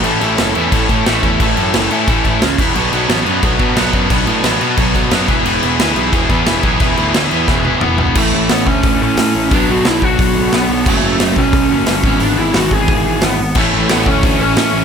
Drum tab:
CC |xxxxxxxx|xxxxxxxx|xxxxxxxx|xxxxxxxx|
HH |--------|--------|--------|--------|
SD |--o---o-|--o---o-|--o---o-|--o---o-|
T1 |--------|--------|--------|--------|
T2 |--------|--------|--------|--------|
FT |--------|--------|--------|--------|
BD |----oo-o|o---oo-o|----oo-o|o---oo-o|

CC |xxxxxxxx|xxxx----|x-------|--------|
HH |--------|--------|--o-o-o-|o-o-o-o-|
SD |--o---o-|--o-o---|--o---o-|--o---o-|
T1 |--------|-----o--|--------|--------|
T2 |--------|------o-|--------|--------|
FT |--------|-------o|--------|--------|
BD |----oo-o|o---o---|o--oo---|o--oo---|

CC |x-------|--------|x-------|
HH |--o-o-o-|o-o-o-o-|--o-o-o-|
SD |--o---o-|--o---o-|--o---o-|
T1 |--------|--------|--------|
T2 |--------|--------|--------|
FT |--------|--------|--------|
BD |o--oo--o|---oo---|o--oo---|